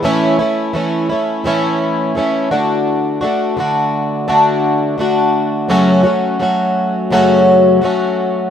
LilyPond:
\new Staff \with { instrumentName = "Twelve-string acoustic guitar" } { \time 4/4 \key a \major \tempo 4 = 85 <a, e a cis' e'>8 <a cis' e'>8 <e a cis' e'>8 <a cis' e'>8 <a, e a cis' e'>4 <e a cis' e'>8 <d a d' fis'>8~ | <d a d' fis'>8 <a d' fis'>8 <d a d' fis'>4 <d a d' fis'>4 <d a d' fis'>4 | <fis, cis fis a cis' fis'>8 <fis a cis' fis'>8 <fis a cis' fis'>4 <fis, cis fis a cis' fis'>4 <fis a cis' fis'>4 | }